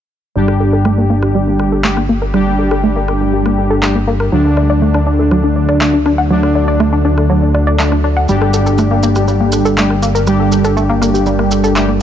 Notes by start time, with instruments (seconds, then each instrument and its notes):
0.35 analog synth bass G1, analog polysynth G3 D4 G4, synth arpeggio sound G3, ambient pad G3 G4 A4 A#4 D5
0.48 synth arpeggio sound A4, cross-stick
0.60 synth arpeggio sound A4
0.73 synth arpeggio sound A4
0.85 synth arpeggio sound A3, cross-stick
0.98 synth arpeggio sound A#3
1.10 synth arpeggio sound A#3
1.23 synth arpeggio sound G4, cross-stick
1.35 synth arpeggio sound G3
1.47 synth arpeggio sound A#3
1.60 synth arpeggio sound A4, cross-stick
1.72 synth arpeggio sound A4
1.84 analog polysynth G3 D4 G4, synth arpeggio sound A3, clap
1.97 synth arpeggio sound A#3, cross-stick
2.09 synth arpeggio sound A#3
2.22 synth arpeggio sound A#4
2.34 analog polysynth G3 D4 G4, synth arpeggio sound G3, cross-stick
2.47 synth arpeggio sound A4
2.59 synth arpeggio sound A4
2.71 synth arpeggio sound A4, cross-stick
2.84 synth arpeggio sound A3
2.96 synth arpeggio sound A#3
3.08 synth arpeggio sound A#3, cross-stick
3.21 synth arpeggio sound G4
3.33 synth arpeggio sound G3
3.46 synth arpeggio sound A#3, cross-stick
3.58 synth arpeggio sound A4
3.70 synth arpeggio sound A4
3.83 analog polysynth G3 D4 G4, synth arpeggio sound A3, cross-stick, clap
3.95 synth arpeggio sound A#3
4.07 synth arpeggio sound A#3
4.20 synth arpeggio sound A#4, cross-stick
4.32 analog synth bass D2, analog polysynth D3 A3 D4, synth arpeggio sound F#3, ambient pad F#4
4.45 synth arpeggio sound D5
4.57 synth arpeggio sound D5, cross-stick
4.70 synth arpeggio sound D5
4.82 synth arpeggio sound A3
4.94 synth arpeggio sound D4, cross-stick
5.07 synth arpeggio sound D4
5.19 synth arpeggio sound A4
5.31 synth arpeggio sound F#3, cross-stick
5.44 synth arpeggio sound D4
5.56 synth arpeggio sound D5
5.69 synth arpeggio sound D5, cross-stick
5.81 analog polysynth D3 A3 D4, synth arpeggio sound A3, clap
5.93 synth arpeggio sound D4
6.06 synth arpeggio sound D4, cross-stick
6.18 synth arpeggio sound F#5
6.30 analog polysynth D3 A3 D4, synth arpeggio sound F#3
6.43 synth arpeggio sound D5, cross-stick
6.55 synth arpeggio sound D5
6.68 synth arpeggio sound D5
6.80 synth arpeggio sound A3, cross-stick
6.93 synth arpeggio sound D4
7.05 synth arpeggio sound D4
7.17 synth arpeggio sound A4, cross-stick
7.30 synth arpeggio sound F#3
7.42 synth arpeggio sound D4
7.54 synth arpeggio sound D5, cross-stick
7.67 synth arpeggio sound D5
7.79 analog polysynth D3 A3 D4, synth arpeggio sound A3, clap
7.92 synth arpeggio sound D4, cross-stick
8.04 synth arpeggio sound D4
8.17 synth arpeggio sound F#5
8.29 analog synth bass G1, synth arpeggio sound G3, ambient pad G3 G4 A#4, analog polysynth G3 D4 G4, maracas
8.42 synth arpeggio sound A4, cross-stick
8.54 synth arpeggio sound A4, maracas
8.66 synth arpeggio sound A4, maracas
8.78 synth arpeggio sound A3, cross-stick, maracas
8.91 synth arpeggio sound A#3
9.03 synth arpeggio sound A#3, maracas
9.15 synth arpeggio sound G4, cross-stick, maracas
9.28 synth arpeggio sound G3, maracas
9.41 synth arpeggio sound A#3
9.52 synth arpeggio sound A4, cross-stick, maracas
9.65 synth arpeggio sound A4, maracas
9.78 analog polysynth G3 D4 G4, synth arpeggio sound A3, clap, maracas
9.90 synth arpeggio sound A#3, cross-stick
10.02 synth arpeggio sound A#3, maracas
10.15 synth arpeggio sound A#4, maracas
10.27 synth arpeggio sound G3, analog polysynth G3 D4 G4, cross-stick, maracas
10.40 synth arpeggio sound A4
10.52 synth arpeggio sound A4, maracas
10.64 synth arpeggio sound A4, cross-stick, maracas
10.77 synth arpeggio sound A3, maracas
10.89 synth arpeggio sound A#3
11.02 synth arpeggio sound A#3, cross-stick, maracas
11.14 synth arpeggio sound G4, maracas
11.26 synth arpeggio sound G3, maracas
11.39 synth arpeggio sound A#3, cross-stick
11.51 synth arpeggio sound A4, maracas
11.64 synth arpeggio sound A4, maracas
11.76 analog polysynth G3 D4 G4, synth arpeggio sound A3, cross-stick, clap, maracas
11.89 synth arpeggio sound A#3